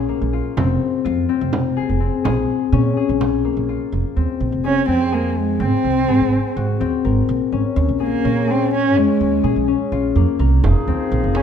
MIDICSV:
0, 0, Header, 1, 6, 480
1, 0, Start_track
1, 0, Key_signature, -5, "minor"
1, 0, Tempo, 478851
1, 576, Time_signature, 7, 3, 24, 8
1, 11452, End_track
2, 0, Start_track
2, 0, Title_t, "Harp"
2, 0, Program_c, 0, 46
2, 0, Note_on_c, 0, 61, 69
2, 0, Note_on_c, 0, 65, 68
2, 0, Note_on_c, 0, 68, 68
2, 88, Note_on_c, 0, 58, 66
2, 224, Note_off_c, 0, 65, 0
2, 331, Note_on_c, 0, 65, 64
2, 570, Note_on_c, 0, 60, 77
2, 630, Note_off_c, 0, 61, 0
2, 1045, Note_off_c, 0, 65, 0
2, 1049, Note_on_c, 0, 65, 71
2, 1288, Note_off_c, 0, 60, 0
2, 1292, Note_on_c, 0, 60, 70
2, 1766, Note_off_c, 0, 68, 0
2, 1770, Note_on_c, 0, 68, 64
2, 2004, Note_off_c, 0, 60, 0
2, 2008, Note_on_c, 0, 60, 58
2, 2245, Note_off_c, 0, 68, 0
2, 2249, Note_on_c, 0, 68, 78
2, 2730, Note_on_c, 0, 61, 73
2, 2790, Note_off_c, 0, 60, 0
2, 2970, Note_off_c, 0, 68, 0
2, 2974, Note_on_c, 0, 68, 62
2, 3311, Note_off_c, 0, 58, 0
2, 3454, Note_on_c, 0, 58, 62
2, 3578, Note_off_c, 0, 65, 0
2, 3697, Note_on_c, 0, 65, 59
2, 4173, Note_on_c, 0, 60, 58
2, 4233, Note_off_c, 0, 61, 0
2, 4646, Note_off_c, 0, 68, 0
2, 4650, Note_on_c, 0, 68, 57
2, 4888, Note_off_c, 0, 60, 0
2, 4892, Note_on_c, 0, 60, 64
2, 5126, Note_off_c, 0, 68, 0
2, 5130, Note_on_c, 0, 68, 63
2, 5608, Note_off_c, 0, 60, 0
2, 5612, Note_on_c, 0, 60, 74
2, 6094, Note_off_c, 0, 68, 0
2, 6098, Note_on_c, 0, 68, 69
2, 6226, Note_off_c, 0, 65, 0
2, 6331, Note_off_c, 0, 60, 0
2, 6335, Note_on_c, 0, 60, 61
2, 6577, Note_on_c, 0, 66, 66
2, 6677, Note_off_c, 0, 58, 0
2, 6815, Note_off_c, 0, 60, 0
2, 6819, Note_on_c, 0, 60, 63
2, 7063, Note_on_c, 0, 70, 59
2, 7541, Note_on_c, 0, 61, 64
2, 7602, Note_off_c, 0, 60, 0
2, 8013, Note_off_c, 0, 68, 0
2, 8017, Note_on_c, 0, 68, 63
2, 8257, Note_off_c, 0, 61, 0
2, 8261, Note_on_c, 0, 61, 68
2, 8490, Note_off_c, 0, 68, 0
2, 8494, Note_on_c, 0, 68, 66
2, 8970, Note_off_c, 0, 61, 0
2, 8974, Note_on_c, 0, 61, 77
2, 9020, Note_off_c, 0, 66, 0
2, 9189, Note_off_c, 0, 70, 0
2, 9453, Note_off_c, 0, 68, 0
2, 9457, Note_on_c, 0, 68, 67
2, 9696, Note_off_c, 0, 61, 0
2, 9700, Note_on_c, 0, 61, 60
2, 9944, Note_on_c, 0, 65, 66
2, 10186, Note_on_c, 0, 58, 64
2, 10421, Note_on_c, 0, 70, 61
2, 10902, Note_on_c, 0, 60, 62
2, 10962, Note_off_c, 0, 61, 0
2, 11380, Note_off_c, 0, 68, 0
2, 11384, Note_on_c, 0, 68, 68
2, 11452, Note_off_c, 0, 58, 0
2, 11452, Note_off_c, 0, 60, 0
2, 11452, Note_off_c, 0, 65, 0
2, 11452, Note_off_c, 0, 68, 0
2, 11452, Note_off_c, 0, 70, 0
2, 11452, End_track
3, 0, Start_track
3, 0, Title_t, "Woodwind section"
3, 0, Program_c, 1, 71
3, 10664, Note_on_c, 1, 63, 60
3, 10669, Note_on_c, 1, 53, 61
3, 10674, Note_on_c, 1, 68, 66
3, 11452, Note_off_c, 1, 53, 0
3, 11452, Note_off_c, 1, 63, 0
3, 11452, Note_off_c, 1, 68, 0
3, 11452, End_track
4, 0, Start_track
4, 0, Title_t, "Cello"
4, 0, Program_c, 2, 42
4, 4658, Note_on_c, 2, 61, 79
4, 4883, Note_off_c, 2, 61, 0
4, 4900, Note_on_c, 2, 60, 83
4, 5147, Note_on_c, 2, 58, 72
4, 5162, Note_off_c, 2, 60, 0
4, 5392, Note_on_c, 2, 56, 67
4, 5407, Note_off_c, 2, 58, 0
4, 5633, Note_on_c, 2, 60, 81
4, 5648, Note_off_c, 2, 56, 0
4, 6587, Note_off_c, 2, 60, 0
4, 8032, Note_on_c, 2, 58, 80
4, 8528, Note_on_c, 2, 60, 81
4, 8543, Note_off_c, 2, 58, 0
4, 8754, Note_off_c, 2, 60, 0
4, 8761, Note_on_c, 2, 61, 85
4, 8995, Note_on_c, 2, 56, 77
4, 9010, Note_off_c, 2, 61, 0
4, 9707, Note_off_c, 2, 56, 0
4, 11380, Note_on_c, 2, 61, 68
4, 11452, Note_off_c, 2, 61, 0
4, 11452, End_track
5, 0, Start_track
5, 0, Title_t, "Upright bass"
5, 0, Program_c, 3, 32
5, 0, Note_on_c, 3, 34, 73
5, 114, Note_off_c, 3, 34, 0
5, 215, Note_on_c, 3, 34, 73
5, 405, Note_off_c, 3, 34, 0
5, 574, Note_on_c, 3, 29, 89
5, 764, Note_off_c, 3, 29, 0
5, 1058, Note_on_c, 3, 41, 84
5, 1247, Note_off_c, 3, 41, 0
5, 1416, Note_on_c, 3, 29, 75
5, 1794, Note_off_c, 3, 29, 0
5, 1898, Note_on_c, 3, 29, 65
5, 2087, Note_off_c, 3, 29, 0
5, 2256, Note_on_c, 3, 34, 83
5, 2446, Note_off_c, 3, 34, 0
5, 2731, Note_on_c, 3, 46, 82
5, 2923, Note_off_c, 3, 46, 0
5, 3099, Note_on_c, 3, 34, 73
5, 3477, Note_off_c, 3, 34, 0
5, 3575, Note_on_c, 3, 34, 66
5, 3766, Note_off_c, 3, 34, 0
5, 3933, Note_on_c, 3, 29, 75
5, 4030, Note_off_c, 3, 29, 0
5, 4175, Note_on_c, 3, 39, 64
5, 4271, Note_off_c, 3, 39, 0
5, 4414, Note_on_c, 3, 34, 76
5, 4511, Note_off_c, 3, 34, 0
5, 4534, Note_on_c, 3, 29, 64
5, 4819, Note_off_c, 3, 29, 0
5, 4892, Note_on_c, 3, 41, 74
5, 5612, Note_on_c, 3, 32, 85
5, 5627, Note_off_c, 3, 41, 0
5, 5710, Note_off_c, 3, 32, 0
5, 5857, Note_on_c, 3, 36, 68
5, 6047, Note_off_c, 3, 36, 0
5, 6098, Note_on_c, 3, 44, 71
5, 6193, Note_off_c, 3, 44, 0
5, 6218, Note_on_c, 3, 32, 64
5, 6408, Note_off_c, 3, 32, 0
5, 6581, Note_on_c, 3, 32, 76
5, 6770, Note_off_c, 3, 32, 0
5, 6823, Note_on_c, 3, 39, 79
5, 6917, Note_off_c, 3, 39, 0
5, 7063, Note_on_c, 3, 32, 72
5, 7251, Note_off_c, 3, 32, 0
5, 7304, Note_on_c, 3, 34, 80
5, 7397, Note_off_c, 3, 34, 0
5, 7541, Note_on_c, 3, 32, 69
5, 7635, Note_off_c, 3, 32, 0
5, 7781, Note_on_c, 3, 39, 89
5, 7875, Note_off_c, 3, 39, 0
5, 7904, Note_on_c, 3, 34, 68
5, 8185, Note_off_c, 3, 34, 0
5, 8269, Note_on_c, 3, 46, 78
5, 8989, Note_off_c, 3, 46, 0
5, 8989, Note_on_c, 3, 41, 87
5, 9080, Note_off_c, 3, 41, 0
5, 9228, Note_on_c, 3, 39, 72
5, 9413, Note_off_c, 3, 39, 0
5, 9462, Note_on_c, 3, 46, 73
5, 9555, Note_off_c, 3, 46, 0
5, 9583, Note_on_c, 3, 34, 64
5, 9770, Note_off_c, 3, 34, 0
5, 9943, Note_on_c, 3, 34, 75
5, 10130, Note_off_c, 3, 34, 0
5, 10179, Note_on_c, 3, 41, 75
5, 10273, Note_off_c, 3, 41, 0
5, 10418, Note_on_c, 3, 36, 79
5, 10607, Note_off_c, 3, 36, 0
5, 10662, Note_on_c, 3, 29, 80
5, 10755, Note_off_c, 3, 29, 0
5, 10900, Note_on_c, 3, 39, 71
5, 10994, Note_off_c, 3, 39, 0
5, 11141, Note_on_c, 3, 34, 83
5, 11234, Note_off_c, 3, 34, 0
5, 11264, Note_on_c, 3, 29, 69
5, 11452, Note_off_c, 3, 29, 0
5, 11452, End_track
6, 0, Start_track
6, 0, Title_t, "Frame drum"
6, 573, Note_on_c, 9, 64, 55
6, 673, Note_off_c, 9, 64, 0
6, 1531, Note_on_c, 9, 64, 55
6, 1631, Note_off_c, 9, 64, 0
6, 2257, Note_on_c, 9, 64, 60
6, 2357, Note_off_c, 9, 64, 0
6, 3217, Note_on_c, 9, 64, 52
6, 3317, Note_off_c, 9, 64, 0
6, 3698, Note_on_c, 9, 64, 15
6, 3798, Note_off_c, 9, 64, 0
6, 10663, Note_on_c, 9, 64, 57
6, 10763, Note_off_c, 9, 64, 0
6, 11141, Note_on_c, 9, 64, 19
6, 11241, Note_off_c, 9, 64, 0
6, 11376, Note_on_c, 9, 64, 47
6, 11452, Note_off_c, 9, 64, 0
6, 11452, End_track
0, 0, End_of_file